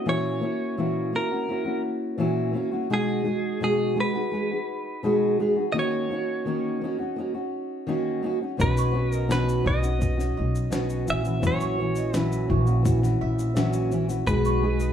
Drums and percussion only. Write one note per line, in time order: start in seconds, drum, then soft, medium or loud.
8.60 kick loud
8.60 shaker medium
8.77 shaker medium
9.12 shaker soft
9.31 snare loud
9.31 shaker medium
9.49 shaker soft
9.66 kick medium
9.83 shaker medium
10.01 kick medium
10.01 shaker medium
10.19 snare soft
10.19 shaker soft
10.55 shaker medium
10.72 snare loud
10.72 shaker medium
10.89 shaker soft
11.07 shaker medium
11.25 shaker soft
11.43 kick loud
11.43 shaker medium
11.60 shaker medium
11.95 shaker medium
12.14 snare loud
12.14 shaker medium
12.32 shaker medium
12.50 kick medium
12.67 shaker soft
12.85 kick loud
12.85 shaker medium
13.03 snare soft
13.03 shaker soft
13.39 shaker medium
13.56 snare medium
13.56 shaker medium
13.73 shaker medium
13.91 shaker medium
14.09 shaker medium
14.27 kick loud
14.27 shaker medium
14.45 shaker medium
14.80 shaker medium